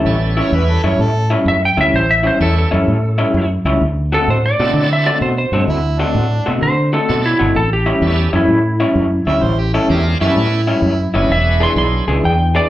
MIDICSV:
0, 0, Header, 1, 6, 480
1, 0, Start_track
1, 0, Tempo, 468019
1, 65, Time_signature, 4, 2, 24, 8
1, 13015, End_track
2, 0, Start_track
2, 0, Title_t, "Electric slide guitar"
2, 0, Program_c, 0, 29
2, 0, Note_on_c, 0, 69, 87
2, 522, Note_off_c, 0, 69, 0
2, 1520, Note_on_c, 0, 76, 82
2, 1669, Note_off_c, 0, 76, 0
2, 1695, Note_on_c, 0, 79, 88
2, 1836, Note_off_c, 0, 79, 0
2, 1853, Note_on_c, 0, 76, 78
2, 1995, Note_off_c, 0, 76, 0
2, 2007, Note_on_c, 0, 72, 85
2, 2152, Note_off_c, 0, 72, 0
2, 2160, Note_on_c, 0, 76, 82
2, 2309, Note_off_c, 0, 76, 0
2, 2328, Note_on_c, 0, 72, 83
2, 2473, Note_off_c, 0, 72, 0
2, 2484, Note_on_c, 0, 69, 75
2, 2631, Note_off_c, 0, 69, 0
2, 2651, Note_on_c, 0, 69, 82
2, 3571, Note_off_c, 0, 69, 0
2, 4249, Note_on_c, 0, 69, 91
2, 4394, Note_off_c, 0, 69, 0
2, 4413, Note_on_c, 0, 72, 74
2, 4556, Note_off_c, 0, 72, 0
2, 4570, Note_on_c, 0, 74, 94
2, 5025, Note_off_c, 0, 74, 0
2, 5054, Note_on_c, 0, 76, 78
2, 5194, Note_on_c, 0, 74, 77
2, 5197, Note_off_c, 0, 76, 0
2, 5347, Note_off_c, 0, 74, 0
2, 5355, Note_on_c, 0, 72, 71
2, 5507, Note_off_c, 0, 72, 0
2, 5521, Note_on_c, 0, 72, 107
2, 5775, Note_off_c, 0, 72, 0
2, 6796, Note_on_c, 0, 72, 79
2, 7104, Note_off_c, 0, 72, 0
2, 7119, Note_on_c, 0, 69, 88
2, 7425, Note_off_c, 0, 69, 0
2, 7442, Note_on_c, 0, 64, 95
2, 7746, Note_off_c, 0, 64, 0
2, 7757, Note_on_c, 0, 69, 100
2, 7909, Note_off_c, 0, 69, 0
2, 7928, Note_on_c, 0, 67, 98
2, 8541, Note_off_c, 0, 67, 0
2, 8571, Note_on_c, 0, 64, 93
2, 9960, Note_off_c, 0, 64, 0
2, 11607, Note_on_c, 0, 76, 117
2, 11914, Note_off_c, 0, 76, 0
2, 11929, Note_on_c, 0, 84, 75
2, 12073, Note_off_c, 0, 84, 0
2, 12084, Note_on_c, 0, 84, 89
2, 12543, Note_off_c, 0, 84, 0
2, 12566, Note_on_c, 0, 79, 94
2, 12873, Note_off_c, 0, 79, 0
2, 12882, Note_on_c, 0, 74, 95
2, 13015, Note_off_c, 0, 74, 0
2, 13015, End_track
3, 0, Start_track
3, 0, Title_t, "Harmonica"
3, 0, Program_c, 1, 22
3, 409, Note_on_c, 1, 73, 80
3, 553, Note_off_c, 1, 73, 0
3, 572, Note_on_c, 1, 71, 74
3, 723, Note_on_c, 1, 69, 79
3, 739, Note_off_c, 1, 71, 0
3, 875, Note_on_c, 1, 73, 83
3, 891, Note_off_c, 1, 69, 0
3, 1042, Note_on_c, 1, 69, 96
3, 1057, Note_off_c, 1, 73, 0
3, 1349, Note_off_c, 1, 69, 0
3, 5839, Note_on_c, 1, 64, 86
3, 6149, Note_on_c, 1, 62, 85
3, 6164, Note_off_c, 1, 64, 0
3, 6694, Note_off_c, 1, 62, 0
3, 9514, Note_on_c, 1, 76, 84
3, 9680, Note_on_c, 1, 72, 80
3, 9695, Note_off_c, 1, 76, 0
3, 9834, Note_on_c, 1, 67, 85
3, 9849, Note_off_c, 1, 72, 0
3, 9984, Note_off_c, 1, 67, 0
3, 9990, Note_on_c, 1, 69, 81
3, 10146, Note_off_c, 1, 69, 0
3, 10156, Note_on_c, 1, 67, 73
3, 10309, Note_off_c, 1, 67, 0
3, 10475, Note_on_c, 1, 64, 85
3, 10618, Note_off_c, 1, 64, 0
3, 10625, Note_on_c, 1, 64, 90
3, 11483, Note_off_c, 1, 64, 0
3, 13015, End_track
4, 0, Start_track
4, 0, Title_t, "Tonewheel organ"
4, 0, Program_c, 2, 16
4, 60, Note_on_c, 2, 55, 62
4, 62, Note_on_c, 2, 59, 56
4, 65, Note_on_c, 2, 61, 58
4, 67, Note_on_c, 2, 64, 56
4, 69, Note_on_c, 2, 69, 67
4, 527, Note_off_c, 2, 55, 0
4, 528, Note_off_c, 2, 59, 0
4, 530, Note_off_c, 2, 61, 0
4, 531, Note_off_c, 2, 64, 0
4, 531, Note_off_c, 2, 69, 0
4, 546, Note_on_c, 2, 61, 69
4, 547, Note_on_c, 2, 55, 68
4, 547, Note_on_c, 2, 64, 62
4, 548, Note_on_c, 2, 59, 63
4, 552, Note_on_c, 2, 71, 75
4, 838, Note_off_c, 2, 55, 0
4, 838, Note_off_c, 2, 61, 0
4, 838, Note_off_c, 2, 64, 0
4, 839, Note_off_c, 2, 59, 0
4, 841, Note_off_c, 2, 71, 0
4, 2469, Note_on_c, 2, 55, 63
4, 2470, Note_on_c, 2, 59, 53
4, 2470, Note_on_c, 2, 61, 59
4, 2473, Note_on_c, 2, 64, 61
4, 2477, Note_on_c, 2, 69, 76
4, 2760, Note_off_c, 2, 55, 0
4, 2760, Note_off_c, 2, 59, 0
4, 2760, Note_off_c, 2, 61, 0
4, 2762, Note_off_c, 2, 64, 0
4, 2764, Note_off_c, 2, 69, 0
4, 4708, Note_on_c, 2, 54, 71
4, 4711, Note_on_c, 2, 62, 63
4, 4711, Note_on_c, 2, 64, 71
4, 4714, Note_on_c, 2, 60, 63
4, 4715, Note_on_c, 2, 69, 80
4, 5315, Note_off_c, 2, 54, 0
4, 5316, Note_off_c, 2, 62, 0
4, 5317, Note_off_c, 2, 64, 0
4, 5318, Note_off_c, 2, 60, 0
4, 5319, Note_off_c, 2, 69, 0
4, 7269, Note_on_c, 2, 60, 52
4, 7270, Note_on_c, 2, 54, 61
4, 7275, Note_on_c, 2, 62, 57
4, 7275, Note_on_c, 2, 64, 53
4, 7280, Note_on_c, 2, 69, 75
4, 7561, Note_off_c, 2, 60, 0
4, 7562, Note_off_c, 2, 54, 0
4, 7565, Note_off_c, 2, 62, 0
4, 7565, Note_off_c, 2, 64, 0
4, 7567, Note_off_c, 2, 69, 0
4, 8226, Note_on_c, 2, 55, 70
4, 8226, Note_on_c, 2, 59, 64
4, 8228, Note_on_c, 2, 61, 61
4, 8232, Note_on_c, 2, 69, 73
4, 8236, Note_on_c, 2, 64, 61
4, 8520, Note_off_c, 2, 55, 0
4, 8520, Note_off_c, 2, 59, 0
4, 8521, Note_off_c, 2, 61, 0
4, 8523, Note_off_c, 2, 69, 0
4, 8525, Note_off_c, 2, 64, 0
4, 10143, Note_on_c, 2, 60, 69
4, 10144, Note_on_c, 2, 56, 73
4, 10145, Note_on_c, 2, 62, 67
4, 10150, Note_on_c, 2, 65, 61
4, 10153, Note_on_c, 2, 70, 83
4, 10439, Note_off_c, 2, 56, 0
4, 10439, Note_off_c, 2, 60, 0
4, 10440, Note_off_c, 2, 62, 0
4, 10442, Note_off_c, 2, 65, 0
4, 10444, Note_off_c, 2, 70, 0
4, 10464, Note_on_c, 2, 55, 67
4, 10469, Note_on_c, 2, 59, 66
4, 10472, Note_on_c, 2, 64, 66
4, 10474, Note_on_c, 2, 61, 67
4, 10476, Note_on_c, 2, 69, 82
4, 10885, Note_off_c, 2, 55, 0
4, 10887, Note_off_c, 2, 59, 0
4, 10889, Note_off_c, 2, 64, 0
4, 10890, Note_off_c, 2, 61, 0
4, 10891, Note_off_c, 2, 69, 0
4, 11424, Note_on_c, 2, 54, 60
4, 11428, Note_on_c, 2, 62, 57
4, 11429, Note_on_c, 2, 59, 54
4, 11430, Note_on_c, 2, 64, 56
4, 11435, Note_on_c, 2, 68, 65
4, 12034, Note_off_c, 2, 54, 0
4, 12036, Note_off_c, 2, 59, 0
4, 12036, Note_off_c, 2, 62, 0
4, 12037, Note_off_c, 2, 64, 0
4, 12039, Note_off_c, 2, 68, 0
4, 12065, Note_on_c, 2, 54, 57
4, 12066, Note_on_c, 2, 59, 50
4, 12067, Note_on_c, 2, 62, 52
4, 12068, Note_on_c, 2, 64, 56
4, 12071, Note_on_c, 2, 68, 64
4, 12360, Note_off_c, 2, 54, 0
4, 12360, Note_off_c, 2, 59, 0
4, 12360, Note_off_c, 2, 62, 0
4, 12361, Note_off_c, 2, 64, 0
4, 12363, Note_off_c, 2, 68, 0
4, 13015, End_track
5, 0, Start_track
5, 0, Title_t, "Clean electric guitar"
5, 0, Program_c, 3, 27
5, 0, Note_on_c, 3, 45, 65
5, 0, Note_on_c, 3, 55, 68
5, 0, Note_on_c, 3, 61, 78
5, 0, Note_on_c, 3, 64, 82
5, 161, Note_off_c, 3, 61, 0
5, 161, Note_off_c, 3, 64, 0
5, 165, Note_off_c, 3, 55, 0
5, 166, Note_off_c, 3, 45, 0
5, 378, Note_on_c, 3, 64, 94
5, 383, Note_on_c, 3, 61, 84
5, 388, Note_on_c, 3, 55, 69
5, 390, Note_on_c, 3, 45, 78
5, 637, Note_off_c, 3, 64, 0
5, 639, Note_off_c, 3, 61, 0
5, 642, Note_off_c, 3, 55, 0
5, 643, Note_off_c, 3, 45, 0
5, 859, Note_on_c, 3, 64, 75
5, 861, Note_on_c, 3, 61, 60
5, 868, Note_on_c, 3, 45, 63
5, 869, Note_on_c, 3, 55, 60
5, 1117, Note_off_c, 3, 64, 0
5, 1118, Note_off_c, 3, 61, 0
5, 1122, Note_off_c, 3, 45, 0
5, 1122, Note_off_c, 3, 55, 0
5, 1335, Note_on_c, 3, 64, 93
5, 1344, Note_on_c, 3, 61, 90
5, 1345, Note_on_c, 3, 55, 86
5, 1348, Note_on_c, 3, 45, 82
5, 1596, Note_off_c, 3, 64, 0
5, 1600, Note_off_c, 3, 61, 0
5, 1601, Note_off_c, 3, 55, 0
5, 1602, Note_off_c, 3, 45, 0
5, 1817, Note_on_c, 3, 64, 77
5, 1820, Note_on_c, 3, 61, 78
5, 1826, Note_on_c, 3, 55, 72
5, 1828, Note_on_c, 3, 45, 59
5, 2077, Note_off_c, 3, 64, 0
5, 2078, Note_off_c, 3, 61, 0
5, 2081, Note_off_c, 3, 55, 0
5, 2082, Note_off_c, 3, 45, 0
5, 2290, Note_on_c, 3, 64, 88
5, 2298, Note_on_c, 3, 61, 92
5, 2300, Note_on_c, 3, 55, 74
5, 2304, Note_on_c, 3, 45, 78
5, 2553, Note_off_c, 3, 64, 0
5, 2558, Note_off_c, 3, 61, 0
5, 2559, Note_off_c, 3, 55, 0
5, 2561, Note_off_c, 3, 45, 0
5, 2779, Note_on_c, 3, 64, 67
5, 2783, Note_on_c, 3, 61, 75
5, 2790, Note_on_c, 3, 55, 64
5, 2792, Note_on_c, 3, 45, 53
5, 3038, Note_off_c, 3, 64, 0
5, 3040, Note_off_c, 3, 61, 0
5, 3044, Note_off_c, 3, 45, 0
5, 3044, Note_off_c, 3, 55, 0
5, 3262, Note_on_c, 3, 64, 94
5, 3266, Note_on_c, 3, 61, 88
5, 3267, Note_on_c, 3, 55, 84
5, 3271, Note_on_c, 3, 45, 79
5, 3520, Note_off_c, 3, 64, 0
5, 3522, Note_off_c, 3, 55, 0
5, 3522, Note_off_c, 3, 61, 0
5, 3524, Note_off_c, 3, 45, 0
5, 3750, Note_on_c, 3, 64, 70
5, 3754, Note_on_c, 3, 55, 76
5, 3756, Note_on_c, 3, 61, 75
5, 3759, Note_on_c, 3, 45, 66
5, 3906, Note_off_c, 3, 64, 0
5, 3909, Note_off_c, 3, 55, 0
5, 3909, Note_off_c, 3, 61, 0
5, 3911, Note_off_c, 3, 45, 0
5, 4229, Note_on_c, 3, 66, 92
5, 4234, Note_on_c, 3, 60, 78
5, 4239, Note_on_c, 3, 57, 75
5, 4241, Note_on_c, 3, 50, 70
5, 4484, Note_off_c, 3, 66, 0
5, 4486, Note_off_c, 3, 60, 0
5, 4488, Note_off_c, 3, 57, 0
5, 4489, Note_off_c, 3, 50, 0
5, 4716, Note_on_c, 3, 66, 65
5, 4721, Note_on_c, 3, 60, 62
5, 4724, Note_on_c, 3, 57, 63
5, 4725, Note_on_c, 3, 50, 61
5, 4967, Note_off_c, 3, 66, 0
5, 4970, Note_off_c, 3, 60, 0
5, 4971, Note_off_c, 3, 57, 0
5, 4972, Note_off_c, 3, 50, 0
5, 5192, Note_on_c, 3, 66, 94
5, 5196, Note_on_c, 3, 57, 78
5, 5196, Note_on_c, 3, 60, 85
5, 5202, Note_on_c, 3, 50, 82
5, 5445, Note_off_c, 3, 66, 0
5, 5447, Note_off_c, 3, 57, 0
5, 5447, Note_off_c, 3, 60, 0
5, 5450, Note_off_c, 3, 50, 0
5, 5671, Note_on_c, 3, 66, 74
5, 5676, Note_on_c, 3, 60, 78
5, 5682, Note_on_c, 3, 57, 71
5, 5683, Note_on_c, 3, 50, 59
5, 5925, Note_off_c, 3, 66, 0
5, 5928, Note_off_c, 3, 60, 0
5, 5930, Note_off_c, 3, 57, 0
5, 5931, Note_off_c, 3, 50, 0
5, 6148, Note_on_c, 3, 66, 91
5, 6152, Note_on_c, 3, 60, 86
5, 6155, Note_on_c, 3, 57, 78
5, 6159, Note_on_c, 3, 50, 83
5, 6404, Note_off_c, 3, 66, 0
5, 6406, Note_off_c, 3, 60, 0
5, 6407, Note_off_c, 3, 57, 0
5, 6409, Note_off_c, 3, 50, 0
5, 6626, Note_on_c, 3, 66, 77
5, 6630, Note_on_c, 3, 60, 70
5, 6635, Note_on_c, 3, 57, 73
5, 6640, Note_on_c, 3, 50, 59
5, 6883, Note_off_c, 3, 66, 0
5, 6885, Note_off_c, 3, 60, 0
5, 6888, Note_off_c, 3, 57, 0
5, 6889, Note_off_c, 3, 50, 0
5, 7106, Note_on_c, 3, 66, 100
5, 7111, Note_on_c, 3, 60, 79
5, 7115, Note_on_c, 3, 57, 87
5, 7117, Note_on_c, 3, 50, 82
5, 7363, Note_off_c, 3, 66, 0
5, 7365, Note_off_c, 3, 60, 0
5, 7367, Note_off_c, 3, 57, 0
5, 7369, Note_off_c, 3, 50, 0
5, 7581, Note_on_c, 3, 66, 88
5, 7584, Note_on_c, 3, 60, 78
5, 7591, Note_on_c, 3, 57, 65
5, 7592, Note_on_c, 3, 50, 60
5, 7743, Note_off_c, 3, 66, 0
5, 7745, Note_off_c, 3, 60, 0
5, 7748, Note_off_c, 3, 57, 0
5, 7749, Note_off_c, 3, 50, 0
5, 8061, Note_on_c, 3, 64, 93
5, 8066, Note_on_c, 3, 61, 86
5, 8072, Note_on_c, 3, 55, 76
5, 8073, Note_on_c, 3, 45, 76
5, 8321, Note_off_c, 3, 64, 0
5, 8323, Note_off_c, 3, 61, 0
5, 8326, Note_off_c, 3, 55, 0
5, 8327, Note_off_c, 3, 45, 0
5, 8543, Note_on_c, 3, 64, 79
5, 8544, Note_on_c, 3, 61, 73
5, 8548, Note_on_c, 3, 55, 72
5, 8554, Note_on_c, 3, 45, 67
5, 8802, Note_off_c, 3, 61, 0
5, 8802, Note_off_c, 3, 64, 0
5, 8804, Note_off_c, 3, 55, 0
5, 8807, Note_off_c, 3, 45, 0
5, 9024, Note_on_c, 3, 64, 106
5, 9028, Note_on_c, 3, 61, 102
5, 9032, Note_on_c, 3, 55, 86
5, 9035, Note_on_c, 3, 45, 79
5, 9282, Note_off_c, 3, 64, 0
5, 9285, Note_off_c, 3, 61, 0
5, 9286, Note_off_c, 3, 55, 0
5, 9288, Note_off_c, 3, 45, 0
5, 9507, Note_on_c, 3, 64, 84
5, 9510, Note_on_c, 3, 61, 71
5, 9516, Note_on_c, 3, 45, 67
5, 9516, Note_on_c, 3, 55, 70
5, 9764, Note_off_c, 3, 64, 0
5, 9765, Note_off_c, 3, 61, 0
5, 9769, Note_off_c, 3, 45, 0
5, 9769, Note_off_c, 3, 55, 0
5, 9989, Note_on_c, 3, 64, 95
5, 9990, Note_on_c, 3, 61, 89
5, 9998, Note_on_c, 3, 55, 78
5, 10001, Note_on_c, 3, 45, 63
5, 10245, Note_off_c, 3, 61, 0
5, 10245, Note_off_c, 3, 64, 0
5, 10250, Note_off_c, 3, 55, 0
5, 10251, Note_off_c, 3, 45, 0
5, 10475, Note_on_c, 3, 64, 70
5, 10480, Note_on_c, 3, 61, 67
5, 10484, Note_on_c, 3, 55, 68
5, 10490, Note_on_c, 3, 45, 52
5, 10728, Note_off_c, 3, 64, 0
5, 10730, Note_off_c, 3, 61, 0
5, 10732, Note_off_c, 3, 55, 0
5, 10735, Note_off_c, 3, 45, 0
5, 10946, Note_on_c, 3, 64, 93
5, 10953, Note_on_c, 3, 61, 81
5, 10956, Note_on_c, 3, 55, 84
5, 10957, Note_on_c, 3, 45, 79
5, 11204, Note_off_c, 3, 64, 0
5, 11207, Note_off_c, 3, 61, 0
5, 11208, Note_off_c, 3, 55, 0
5, 11209, Note_off_c, 3, 45, 0
5, 11423, Note_on_c, 3, 64, 79
5, 11432, Note_on_c, 3, 61, 67
5, 11433, Note_on_c, 3, 55, 64
5, 11435, Note_on_c, 3, 45, 71
5, 11584, Note_off_c, 3, 64, 0
5, 11589, Note_off_c, 3, 61, 0
5, 11590, Note_off_c, 3, 55, 0
5, 11591, Note_off_c, 3, 45, 0
5, 11901, Note_on_c, 3, 68, 85
5, 11905, Note_on_c, 3, 62, 81
5, 11908, Note_on_c, 3, 59, 75
5, 11912, Note_on_c, 3, 52, 83
5, 12161, Note_off_c, 3, 68, 0
5, 12163, Note_off_c, 3, 62, 0
5, 12164, Note_off_c, 3, 59, 0
5, 12166, Note_off_c, 3, 52, 0
5, 12387, Note_on_c, 3, 68, 75
5, 12394, Note_on_c, 3, 62, 63
5, 12396, Note_on_c, 3, 59, 63
5, 12399, Note_on_c, 3, 52, 57
5, 12644, Note_off_c, 3, 68, 0
5, 12647, Note_off_c, 3, 62, 0
5, 12648, Note_off_c, 3, 59, 0
5, 12650, Note_off_c, 3, 52, 0
5, 12869, Note_on_c, 3, 68, 104
5, 12871, Note_on_c, 3, 62, 92
5, 12876, Note_on_c, 3, 59, 79
5, 12879, Note_on_c, 3, 52, 74
5, 13015, Note_off_c, 3, 52, 0
5, 13015, Note_off_c, 3, 59, 0
5, 13015, Note_off_c, 3, 62, 0
5, 13015, Note_off_c, 3, 68, 0
5, 13015, End_track
6, 0, Start_track
6, 0, Title_t, "Fingered electric bass"
6, 0, Program_c, 4, 33
6, 52, Note_on_c, 4, 33, 89
6, 417, Note_off_c, 4, 33, 0
6, 536, Note_on_c, 4, 40, 100
6, 783, Note_off_c, 4, 40, 0
6, 859, Note_on_c, 4, 42, 79
6, 980, Note_off_c, 4, 42, 0
6, 1017, Note_on_c, 4, 45, 86
6, 1380, Note_off_c, 4, 45, 0
6, 1492, Note_on_c, 4, 42, 93
6, 1741, Note_off_c, 4, 42, 0
6, 1818, Note_on_c, 4, 38, 80
6, 1939, Note_off_c, 4, 38, 0
6, 1987, Note_on_c, 4, 33, 91
6, 2347, Note_off_c, 4, 33, 0
6, 2465, Note_on_c, 4, 40, 85
6, 2709, Note_off_c, 4, 40, 0
6, 2803, Note_on_c, 4, 42, 81
6, 2915, Note_off_c, 4, 42, 0
6, 2953, Note_on_c, 4, 45, 88
6, 3311, Note_off_c, 4, 45, 0
6, 3426, Note_on_c, 4, 42, 91
6, 3670, Note_off_c, 4, 42, 0
6, 3743, Note_on_c, 4, 37, 86
6, 3863, Note_off_c, 4, 37, 0
6, 3911, Note_on_c, 4, 38, 85
6, 4270, Note_off_c, 4, 38, 0
6, 4388, Note_on_c, 4, 45, 84
6, 4631, Note_off_c, 4, 45, 0
6, 4713, Note_on_c, 4, 47, 74
6, 4829, Note_off_c, 4, 47, 0
6, 4857, Note_on_c, 4, 50, 81
6, 5221, Note_off_c, 4, 50, 0
6, 5345, Note_on_c, 4, 47, 96
6, 5590, Note_off_c, 4, 47, 0
6, 5661, Note_on_c, 4, 43, 83
6, 5782, Note_off_c, 4, 43, 0
6, 5822, Note_on_c, 4, 38, 83
6, 6185, Note_off_c, 4, 38, 0
6, 6305, Note_on_c, 4, 45, 95
6, 6550, Note_off_c, 4, 45, 0
6, 6643, Note_on_c, 4, 47, 81
6, 6756, Note_off_c, 4, 47, 0
6, 6792, Note_on_c, 4, 50, 90
6, 7151, Note_off_c, 4, 50, 0
6, 7277, Note_on_c, 4, 47, 94
6, 7518, Note_off_c, 4, 47, 0
6, 7597, Note_on_c, 4, 31, 81
6, 7713, Note_off_c, 4, 31, 0
6, 7748, Note_on_c, 4, 33, 83
6, 8109, Note_off_c, 4, 33, 0
6, 8220, Note_on_c, 4, 40, 89
6, 8467, Note_off_c, 4, 40, 0
6, 8548, Note_on_c, 4, 42, 86
6, 8667, Note_off_c, 4, 42, 0
6, 8698, Note_on_c, 4, 45, 93
6, 9063, Note_off_c, 4, 45, 0
6, 9183, Note_on_c, 4, 42, 89
6, 9429, Note_off_c, 4, 42, 0
6, 9503, Note_on_c, 4, 38, 83
6, 9624, Note_off_c, 4, 38, 0
6, 9660, Note_on_c, 4, 33, 92
6, 10024, Note_off_c, 4, 33, 0
6, 10152, Note_on_c, 4, 40, 99
6, 10395, Note_off_c, 4, 40, 0
6, 10473, Note_on_c, 4, 42, 73
6, 10591, Note_off_c, 4, 42, 0
6, 10627, Note_on_c, 4, 45, 83
6, 10988, Note_off_c, 4, 45, 0
6, 11098, Note_on_c, 4, 42, 89
6, 11346, Note_off_c, 4, 42, 0
6, 11428, Note_on_c, 4, 30, 75
6, 11547, Note_off_c, 4, 30, 0
6, 11582, Note_on_c, 4, 28, 97
6, 11945, Note_off_c, 4, 28, 0
6, 12058, Note_on_c, 4, 35, 87
6, 12306, Note_off_c, 4, 35, 0
6, 12387, Note_on_c, 4, 37, 78
6, 12507, Note_off_c, 4, 37, 0
6, 12547, Note_on_c, 4, 40, 90
6, 12908, Note_off_c, 4, 40, 0
6, 13015, End_track
0, 0, End_of_file